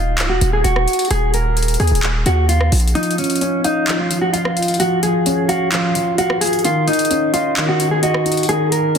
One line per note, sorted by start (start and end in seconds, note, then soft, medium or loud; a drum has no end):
0.00 0.20 D#1 loud
0.00 0.28 F4 medium
0.18 0.31 C#1 loud
0.18 clap loud
0.18 closed hi-hat medium
0.29 0.41 D#1 loud
0.29 0.51 F#4 medium
0.41 0.63 D#1 loud
0.41 closed hi-hat medium
0.53 0.64 G#4 medium
0.64 0.87 D#1 loud
0.64 1.08 F#4 medium
0.64 closed hi-hat medium
0.76 cross-stick medium
0.88 closed hi-hat medium
0.93 closed hi-hat medium
0.99 closed hi-hat medium
1.05 closed hi-hat medium
1.11 1.77 D#1 loud
1.11 1.32 G#4 loud
1.11 closed hi-hat medium
1.34 1.77 A#4 medium
1.34 closed hi-hat medium
1.57 closed hi-hat medium
1.63 closed hi-hat medium
1.68 closed hi-hat medium
1.74 closed hi-hat medium
1.80 1.91 D#2 loud
1.80 2.01 G#4 medium
1.80 closed hi-hat soft
1.87 2.25 D#1 loud
1.87 closed hi-hat medium
1.95 closed hi-hat medium
2.03 clap loud
2.03 closed hi-hat medium
2.26 2.70 D#2 loud
2.26 2.48 F#4 medium
2.26 closed hi-hat medium
2.49 2.70 F4 medium
2.49 closed hi-hat medium
2.61 cross-stick medium
2.72 2.94 A#1 loud
2.72 closed hi-hat soft
2.72 open hi-hat medium
2.80 closed hi-hat soft
2.88 closed hi-hat medium
2.95 3.17 F3 loud
2.95 3.17 D#4 loud
2.95 closed hi-hat medium
3.03 closed hi-hat medium
3.11 closed hi-hat medium
3.18 3.86 F3 medium
3.18 3.62 C#4 medium
3.18 closed hi-hat medium
3.24 closed hi-hat medium
3.30 closed hi-hat medium
3.36 closed hi-hat medium
3.41 4.57 C#4 medium
3.41 closed hi-hat medium
3.64 3.97 D#4 medium
3.64 4.32 F5 medium
3.64 closed hi-hat medium
3.87 4.09 F3 medium
3.87 clap loud
3.87 closed hi-hat medium
3.99 4.20 F4 medium
4.11 4.78 F3 medium
4.11 closed hi-hat medium
4.22 4.33 F#4 medium
4.33 4.77 F4 medium
4.33 5.48 F5 loud
4.33 closed hi-hat medium
4.45 cross-stick medium
4.57 5.72 F4 medium
4.57 closed hi-hat medium
4.62 closed hi-hat medium
4.68 closed hi-hat medium
4.74 closed hi-hat medium
4.80 5.01 F3 loud
4.80 5.01 F#4 loud
4.80 closed hi-hat medium
5.03 5.71 F3 medium
5.03 5.46 G#4 medium
5.03 closed hi-hat medium
5.26 6.41 C#4 medium
5.26 closed hi-hat medium
5.49 5.70 F#4 medium
5.49 6.17 F5 loud
5.49 closed hi-hat medium
5.72 5.94 F3 medium
5.72 6.15 F4 medium
5.72 clap loud
5.72 closed hi-hat medium
5.95 6.64 F3 medium
5.95 closed hi-hat medium
6.18 6.40 F#4 medium
6.18 6.64 F5 loud
6.18 closed hi-hat medium
6.30 cross-stick loud
6.41 6.64 F4 medium
6.41 6.63 G#4 medium
6.41 closed hi-hat medium
6.41 open hi-hat medium
6.47 closed hi-hat medium
6.53 closed hi-hat medium
6.59 closed hi-hat soft
6.65 6.86 D#3 loud
6.65 6.86 F4 loud
6.65 closed hi-hat medium
6.87 7.55 D#3 medium
6.87 7.31 D#4 medium
6.87 closed hi-hat medium
6.93 closed hi-hat medium
6.99 closed hi-hat medium
7.05 closed hi-hat medium
7.11 8.26 C#4 medium
7.11 closed hi-hat medium
7.34 7.66 F4 medium
7.34 8.01 D#5 medium
7.34 closed hi-hat medium
7.57 7.78 D#3 medium
7.57 clap loud
7.57 closed hi-hat medium
7.69 7.90 F#4 medium
7.80 8.47 D#3 medium
7.80 closed hi-hat medium
7.91 8.02 G#4 medium
8.03 8.46 F#4 medium
8.03 8.98 D#5 medium
8.03 closed hi-hat medium
8.14 cross-stick loud
8.26 8.98 D#4 medium
8.26 closed hi-hat medium
8.32 closed hi-hat medium
8.37 closed hi-hat medium
8.43 closed hi-hat medium
8.49 8.71 D#3 loud
8.49 8.70 G#4 loud
8.49 closed hi-hat medium
8.72 8.98 D#3 medium
8.72 8.98 A#4 medium
8.72 closed hi-hat medium